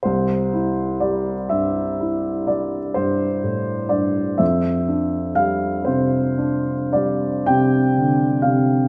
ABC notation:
X:1
M:9/8
L:1/8
Q:3/8=41
K:C
V:1 name="Grand piano"
c2 d e2 d c2 d | e2 f c2 d g2 f |]
V:2 name="Grand piano" clef=bass
C,, E G, G,, E G, G,, A,, G,, | F,, D G, C, D G, C, D, C, |]